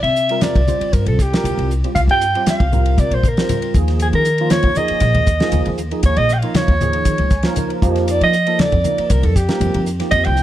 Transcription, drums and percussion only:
0.04 ride medium
0.16 hi-hat pedal medium
0.29 ride medium
0.41 snare medium
0.41 hi-hat pedal medium
0.41 ride medium
0.41 high conga medium
0.55 kick medium
0.55 ride medium
0.68 hi-hat pedal medium
0.68 muted conga soft
0.68 high conga medium
0.81 ride medium
0.93 kick medium
0.93 hi-hat pedal medium
0.93 ride medium
1.06 ride medium
1.18 kick medium
1.18 snare soft
1.18 hi-hat pedal medium
1.18 muted conga soft
1.33 snare loud
1.33 ride medium
1.44 hi-hat pedal medium
1.44 ride medium
1.44 high conga medium
1.59 ride medium
1.71 hi-hat pedal medium
1.84 ride soft
1.96 kick medium
1.96 hi-hat pedal medium
1.96 ride medium
1.96 muted conga soft
2.09 ride medium
2.21 hi-hat pedal medium
2.35 ride soft
2.46 snare loud
2.46 hi-hat pedal medium
2.46 ride medium
2.46 high conga medium
2.60 kick medium
2.60 ride medium
2.72 hi-hat pedal medium
2.72 muted conga soft
2.72 high conga medium
2.72 low conga medium
2.86 ride medium
2.98 kick medium
2.98 hi-hat pedal medium
2.98 ride medium
3.11 ride medium
3.23 kick medium
3.23 hi-hat pedal medium
3.23 muted conga soft
3.23 high conga medium
3.37 snare loud
3.37 ride medium
3.49 hi-hat pedal medium
3.49 ride medium
3.49 high conga medium
3.49 low conga medium
3.62 ride medium
3.74 kick medium
3.74 hi-hat pedal medium
3.88 snare soft
3.88 ride medium
4.00 hi-hat pedal medium
4.00 ride medium
4.00 muted conga soft
4.13 ride medium
4.25 hi-hat pedal medium
4.38 ride medium
4.50 snare loud
4.50 hi-hat pedal medium
4.50 ride medium
4.50 high conga medium
4.63 kick medium
4.63 ride medium
4.75 hi-hat pedal medium
4.75 muted conga soft
4.75 high conga medium
4.88 ride medium
5.00 kick medium
5.00 hi-hat pedal medium
5.00 ride medium
5.00 muted conga soft
5.15 ride medium
5.27 kick medium
5.27 snare soft
5.27 hi-hat pedal medium
5.27 muted conga soft
5.40 snare loud
5.40 ride soft
5.52 hi-hat pedal medium
5.52 ride medium
5.52 high conga medium
5.66 ride medium
5.78 hi-hat pedal medium
5.91 ride soft
6.03 kick medium
6.03 hi-hat pedal medium
6.03 ride medium
6.03 muted conga soft
6.17 ride medium
6.29 snare soft
6.29 hi-hat pedal medium
6.42 ride medium
6.55 snare loud
6.55 hi-hat pedal medium
6.55 ride medium
6.55 high conga medium
6.68 kick medium
6.68 ride medium
6.81 hi-hat pedal medium
6.81 muted conga soft
6.81 high conga medium
6.81 low conga medium
6.93 ride medium
7.05 kick medium
7.05 hi-hat pedal medium
7.05 ride medium
7.05 muted conga soft
7.18 ride medium
7.30 kick medium
7.30 snare soft
7.30 hi-hat pedal medium
7.30 muted conga soft
7.43 snare medium
7.43 ride medium
7.56 hi-hat pedal medium
7.56 ride medium
7.56 high conga medium
7.56 low conga medium
7.70 ride soft
7.82 kick medium
7.82 hi-hat pedal medium
7.96 snare soft
7.96 ride medium
8.08 hi-hat pedal medium
8.08 ride medium
8.08 muted conga soft
8.21 ride medium
8.33 hi-hat pedal medium
8.47 ride medium
8.59 snare loud
8.59 hi-hat pedal medium
8.59 ride medium
8.59 high conga medium
8.72 kick medium
8.72 ride soft
8.84 hi-hat pedal medium
8.84 muted conga soft
8.84 high conga medium
8.98 ride medium
9.10 kick medium
9.10 hi-hat pedal medium
9.10 ride medium
9.10 muted conga soft
9.23 ride medium
9.36 kick medium
9.36 snare soft
9.36 hi-hat pedal medium
9.49 snare medium
9.49 ride medium
9.61 hi-hat pedal medium
9.61 ride medium
9.61 high conga medium
9.74 ride medium
9.86 hi-hat pedal medium
10.00 snare soft
10.00 ride medium
10.11 kick medium
10.11 hi-hat pedal medium
10.11 ride medium
10.11 muted conga soft
10.25 ride medium
10.37 hi-hat pedal medium

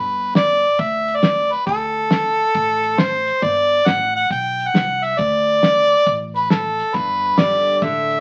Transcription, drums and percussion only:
0.35 snare loud
0.35 closed hi-hat medium
0.79 kick loud
0.79 closed hi-hat medium
1.08 closed hi-hat medium
1.23 snare loud
1.23 closed hi-hat medium
1.52 closed hi-hat medium
1.67 kick loud
1.67 closed hi-hat medium
2.11 snare loud
2.11 closed hi-hat medium
2.55 kick loud
2.55 closed hi-hat medium
2.83 closed hi-hat medium
2.98 snare loud
2.98 closed hi-hat medium
3.27 closed hi-hat medium
3.42 kick loud
3.42 closed hi-hat medium
3.86 snare loud
3.86 closed hi-hat medium
4.30 kick loud
4.30 closed hi-hat medium
4.60 closed hi-hat medium
4.75 snare loud
4.75 closed hi-hat medium
5.04 closed hi-hat medium
5.19 kick loud
5.19 closed hi-hat medium
5.63 snare loud
5.63 closed hi-hat medium
6.06 kick loud
6.06 closed hi-hat medium
6.36 closed hi-hat medium
6.50 snare loud
6.50 closed hi-hat medium
6.80 closed hi-hat medium
6.94 kick loud
6.94 closed hi-hat medium
7.38 snare loud
7.38 closed hi-hat medium
7.82 kick loud
7.82 closed hi-hat medium
8.11 closed hi-hat medium

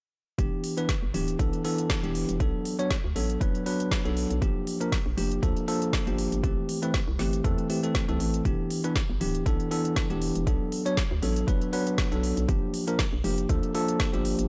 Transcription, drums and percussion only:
0.39 kick loud
0.39 closed hi-hat medium
0.64 open hi-hat loud
0.77 closed hi-hat medium
0.89 kick loud
0.89 snare loud
0.89 closed hi-hat medium
1.14 open hi-hat medium
1.28 closed hi-hat medium
1.39 kick loud
1.39 closed hi-hat medium
1.53 closed hi-hat soft
1.65 open hi-hat loud
1.78 closed hi-hat soft
1.90 kick loud
1.90 snare loud
1.90 closed hi-hat medium
2.04 closed hi-hat soft
2.15 open hi-hat medium
2.29 closed hi-hat medium
2.40 kick loud
2.40 closed hi-hat medium
2.65 open hi-hat loud
2.79 closed hi-hat soft
2.91 kick loud
2.91 snare loud
2.91 closed hi-hat medium
3.16 open hi-hat medium
3.30 closed hi-hat soft
3.41 kick loud
3.41 closed hi-hat medium
3.55 closed hi-hat soft
3.66 open hi-hat loud
3.80 closed hi-hat soft
3.91 kick loud
3.91 snare loud
3.91 closed hi-hat medium
4.05 closed hi-hat soft
4.17 open hi-hat medium
4.31 closed hi-hat soft
4.42 kick loud
4.42 closed hi-hat medium
4.67 open hi-hat loud
4.81 closed hi-hat soft
4.92 kick loud
4.92 snare loud
4.92 closed hi-hat medium
5.18 open hi-hat medium
5.31 closed hi-hat soft
5.43 kick loud
5.43 closed hi-hat medium
5.57 closed hi-hat soft
5.68 open hi-hat loud
5.82 closed hi-hat soft
5.93 kick loud
5.93 snare loud
5.93 closed hi-hat medium
6.07 closed hi-hat soft
6.18 open hi-hat loud
6.32 closed hi-hat soft
6.44 kick loud
6.44 closed hi-hat medium
6.69 open hi-hat loud
6.83 closed hi-hat soft
6.94 kick loud
6.94 snare loud
6.94 closed hi-hat medium
7.19 snare soft
7.19 open hi-hat medium
7.33 closed hi-hat soft
7.44 kick loud
7.44 closed hi-hat medium
7.58 closed hi-hat soft
7.70 open hi-hat loud
7.83 closed hi-hat soft
7.95 kick loud
7.95 snare loud
7.95 closed hi-hat medium
8.09 closed hi-hat soft
8.20 open hi-hat medium
8.34 closed hi-hat soft
8.45 kick loud
8.45 closed hi-hat medium
8.71 open hi-hat medium
8.84 closed hi-hat soft
8.96 kick loud
8.96 snare loud
8.96 closed hi-hat medium
9.21 open hi-hat medium
9.35 closed hi-hat soft
9.46 kick loud
9.46 closed hi-hat medium
9.60 closed hi-hat soft
9.71 open hi-hat loud
9.85 closed hi-hat soft
9.96 kick loud
9.96 snare loud
9.96 closed hi-hat medium
10.10 closed hi-hat soft
10.22 open hi-hat medium
10.35 closed hi-hat soft
10.47 kick loud
10.47 closed hi-hat medium
10.72 open hi-hat medium
10.86 closed hi-hat medium
10.97 kick loud
10.97 snare loud
10.97 closed hi-hat medium
11.23 open hi-hat medium
11.36 closed hi-hat soft
11.48 kick loud
11.48 closed hi-hat medium
11.62 closed hi-hat soft
11.73 open hi-hat loud
11.87 closed hi-hat medium
11.98 kick loud
11.98 snare loud
11.98 closed hi-hat medium
12.12 closed hi-hat soft
12.23 open hi-hat medium
12.37 closed hi-hat soft
12.49 kick loud
12.49 closed hi-hat medium
12.74 open hi-hat medium
12.88 closed hi-hat medium
12.99 kick loud
12.99 snare loud
12.99 closed hi-hat medium
13.24 open hi-hat medium
13.38 closed hi-hat medium
13.49 kick loud
13.49 closed hi-hat medium
13.63 closed hi-hat soft
13.75 open hi-hat loud
13.88 closed hi-hat medium
14.00 kick loud
14.00 snare loud
14.00 closed hi-hat medium
14.14 closed hi-hat soft
14.25 open hi-hat medium
14.39 closed hi-hat medium

